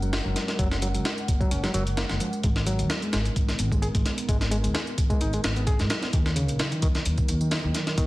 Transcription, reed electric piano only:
0.02 0.09 F#3 medium
0.13 0.18 F#4 medium
0.25 0.58 F#3 medium
0.59 0.67 F#3 medium
0.82 0.87 F#3 medium
0.94 1.04 F#3 medium
1.05 1.10 F#4 medium
1.40 1.51 F#3 medium
1.51 1.63 C#4 medium
1.64 1.71 F#3 loud
1.74 1.82 F#3 loud
1.97 2.02 A#3 loud
2.21 2.29 F3 medium
2.44 2.49 G#3 medium
2.67 3.01 F#3 medium
3.03 3.12 G#3 medium
3.14 3.18 G#3 medium
3.72 3.79 G#3 medium
3.82 3.87 G#4 medium
3.95 4.27 G#3 medium
4.29 4.37 G#3 medium
4.51 4.56 G#3 loud
4.64 4.73 G#3 medium
4.74 4.79 G#4 medium
5.10 5.20 G#3 loud
5.21 5.33 D#4 medium
5.34 5.40 G#3 medium
5.45 5.52 B3 medium
5.57 5.63 B3 medium
5.67 5.79 G#4 medium
5.80 5.89 G#3 medium
5.90 6.01 F#3 medium
6.02 6.09 B3 medium
6.13 6.18 D#3 medium
6.36 6.70 C#3 loud
6.71 6.81 D#3 medium
6.82 6.87 D#3 medium
7.41 7.48 D#3 medium
7.51 7.56 D#4 medium
7.64 7.96 D#3 medium
7.97 8.06 D#3 medium

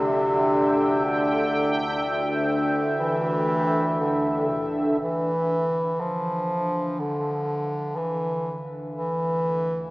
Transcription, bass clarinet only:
0.00 1.06 C3 medium
1.04 2.54 D3 medium
3.00 3.97 E3 loud
4.00 4.72 D3 medium
5.02 6.02 E3 medium
6.00 7.01 F3 medium
7.00 7.98 D3 medium
7.97 8.71 E3 medium
8.95 9.90 E3 medium

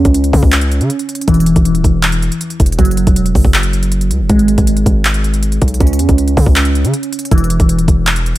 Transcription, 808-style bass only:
0.05 0.32 C#2 loud
0.33 0.42 C#3 loud
0.43 0.82 C#2 loud
0.80 0.89 C#3 loud
1.28 1.55 E1 loud
1.56 1.76 E1 loud
1.75 1.84 D#1 loud
1.84 2.30 E1 loud
2.60 2.78 E1 loud
2.79 3.06 F#1 loud
3.07 3.34 E1 loud
3.35 3.44 F#1 loud
3.45 4.12 F#1 loud
4.11 4.22 C#2 loud
4.20 4.29 F#1 loud
4.30 4.57 G#1 loud
4.58 4.85 G#1 loud
4.86 5.59 G#1 loud
5.62 5.80 B1 loud
5.80 6.01 C#2 loud
5.99 6.08 E2 loud
6.09 6.36 C#2 loud
6.37 6.46 C#3 loud
6.46 6.86 C#2 loud
6.84 6.93 C#3 loud
7.31 7.59 E1 loud
7.60 7.80 E1 loud
7.79 7.88 D#1 loud
7.88 8.33 E1 loud

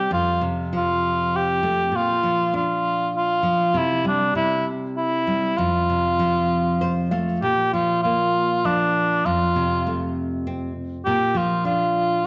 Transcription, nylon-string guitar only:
0.00 0.10 G3 medium
0.11 1.90 F2 medium
0.41 1.60 C3 soft
0.73 1.90 F3 soft
1.63 1.93 A3 medium
1.92 3.69 A#2 medium
2.23 3.40 F3 soft
2.54 3.70 D4 medium
3.43 3.73 F3 medium
3.74 4.34 C3 medium
4.05 5.22 G3 soft
4.35 5.53 C3 medium
5.27 5.56 G3 medium
5.58 7.39 F2 medium
5.90 7.08 C3 soft
6.19 7.39 F3 soft
6.81 7.09 C5 medium
7.11 7.41 A3 soft
7.11 7.40 F5 medium
7.42 9.21 A#2 medium
7.73 8.64 F3 soft
8.05 9.22 A#3 medium
8.65 9.23 F3 medium
9.26 11.02 F2 medium
9.56 10.72 C3 medium
9.87 11.02 A3 medium
10.47 11.04 C4 medium
11.07 12.27 A#2 medium
11.35 12.24 F3 soft
11.65 12.27 D4 medium

